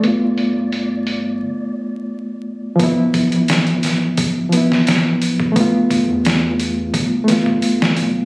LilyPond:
<<
  \new Staff \with { instrumentName = "Synth texture" } { \time 4/4 \key d \dorian \tempo 4 = 87 d''2 r2 | r1 | r1 | }
  \new Staff \with { instrumentName = "Reed electric piano" } { \time 4/4 \key d \dorian <a b f'>1 | <f b e'>2~ <f b e'>8 <f b e'>4. | <a b f'>2~ <a b f'>8 <a b f'>4. | }
  \new Staff \with { instrumentName = "Sub bass" } { \clef bass \time 4/4 \key d \dorian g,,2 r2 | d,,1 | g,,8. e,4~ e,16 g,,4. b,,8 | }
  \new DrumStaff \with { instrumentName = "Drums" } \drummode { \time 4/4 hho8 hho8 hho8 hho8 r4 r4 | <hho bd>8 <hho bd>16 hh16 <hho sn>16 hh16 <hho sn>8 <hho bd>8 hho16 sn16 <hho sn>8 hho16 bd16 | <hho bd>8 <hho bd>8 <hho sn>8 hho8 <hho bd>8 <hho sn>16 bd16 hho16 sn16 hho8 | }
>>